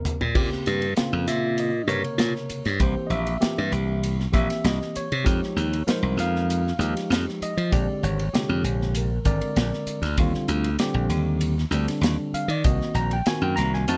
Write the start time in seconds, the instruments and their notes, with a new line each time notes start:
Already playing: tine electric piano C#3 A#3 C4 A#4
0.05 muted slap bass stroke, floor tom, hi-hat pedal
0.21 slap bass A#2, floor tom
0.35 slap bass A#2, tine electric piano C#3 A#3 C4 G4, kick, crash
0.52 snare
0.66 slap bass G2, hi-hat pedal, ride
0.82 ride
0.96 tine electric piano C#3 A#3 C4 F4, muted slap bass stroke, snare, hi-hat pedal, ride
1.13 slap bass F2
1.27 slap bass A#2, tine electric piano E5, snare, hi-hat pedal, ride
1.58 tine electric piano D#5, hi-hat pedal, ride
1.87 slap bass G2, tine electric piano C3 C#3 A#3 A#4 C#5, hi-hat pedal, ride
2.04 ride
2.18 slap bass A#2, snare, hi-hat pedal, ride
2.36 snare
2.50 muted slap bass stroke, hi-hat pedal, ride
2.65 slap bass G2, snare, ride
2.80 slap bass C2, tine electric piano E3 A#3 C4 G4 C5, kick, hi-hat pedal, ride
3.07 slap bass A#1, tine electric piano D#5, hi-hat pedal, ride
3.11 tine electric piano E5
3.27 ride
3.41 tine electric piano E3 A#3 C4 G4, muted slap bass stroke, snare, hi-hat pedal, ride
3.58 slap bass G2
3.72 slap bass C2, hi-hat pedal, ride
4.03 hi-hat pedal, ride
4.20 snare
4.32 slap bass A#1, tine electric piano E3 A#3 C4 G4 E5, kick, hi-hat pedal, ride
4.50 snare, ride
4.64 slap bass C2, tine electric piano D#5, snare, hi-hat pedal, ride
4.82 snare
4.96 tine electric piano C#5, muted slap bass stroke, hi-hat pedal, ride
5.12 slap bass C3, ride
5.24 slap bass F2, tine electric piano F3 G#3 D#4 G4, kick, hi-hat pedal, ride
5.43 snare
5.56 slap bass D#2, hi-hat pedal, ride
5.73 ride
5.87 tine electric piano F3 G#3 D#4 A#4 C5, muted slap bass stroke, snare, hi-hat pedal, ride
6.03 slap bass C2
6.17 slap bass F2, tine electric piano F5, snare, hi-hat pedal, ride
6.36 snare
6.50 hi-hat pedal, ride
6.67 snare
6.79 slap bass D#2, tine electric piano F3 G#3 D#4 G4, hi-hat pedal, ride
6.97 snare, ride
7.10 slap bass F2, snare, hi-hat pedal, ride
7.29 snare
7.42 tine electric piano D#5, muted slap bass stroke, hi-hat pedal, ride
7.57 slap bass F3, ride
7.72 slap bass A#1, tine electric piano D3 G#3 C4 G4 D5, kick, hi-hat pedal, ride
8.03 slap bass G#1, tine electric piano C#5, hi-hat pedal, ride
8.19 ride
8.33 tine electric piano C3 D3 G#3 G4, snare, hi-hat pedal, ride
8.49 slap bass F2
8.64 slap bass A#1, hi-hat pedal, ride
8.81 snare
8.95 tine electric piano A#4, hi-hat pedal, ride
9.25 slap bass G#1, tine electric piano D3 G#3 C4 A#4 D5, kick, hi-hat pedal, ride
9.41 ride
9.56 slap bass A#1, snare, hi-hat pedal, ride
9.73 snare
9.86 muted slap bass stroke, hi-hat pedal, ride
10.02 slap bass D2, snare, ride
10.17 slap bass D#2, tine electric piano D3 G3 C4 F4, kick, hi-hat pedal, ride
10.34 snare
10.48 slap bass D2, hi-hat pedal, ride
10.64 ride
10.79 tine electric piano D3 G3 C4 G4, muted slap bass stroke, snare, hi-hat pedal, ride
10.94 slap bass A#1
11.09 slap bass D#2, hi-hat pedal, ride
11.41 hi-hat pedal, ride
11.58 snare
11.71 slap bass D2, tine electric piano D3 G3 C4 D4, hi-hat pedal, ride
11.88 snare, ride
12.01 slap bass D#2, snare, hi-hat pedal, ride
12.33 tine electric piano F5, muted slap bass stroke, hi-hat pedal, ride
12.48 slap bass D#3, tine electric piano D5, ride
12.64 slap bass C2, tine electric piano D#3 A#3 C4 F#4 D#5, kick, hi-hat pedal, ride
12.81 snare
12.94 slap bass A#1, tine electric piano A#5, hi-hat pedal, ride
13.11 tine electric piano G5, ride
13.26 tine electric piano D#3 A#3 C4 F#4 G#5, snare, hi-hat pedal, ride
13.42 slap bass F#2, tine electric piano G5
13.56 slap bass C2, tine electric piano A#5, snare, hi-hat pedal, ride
13.74 tine electric piano G#5, snare
13.88 slap bass F2, tine electric piano F3 A3 D#4 F#4 A5, hi-hat pedal, ride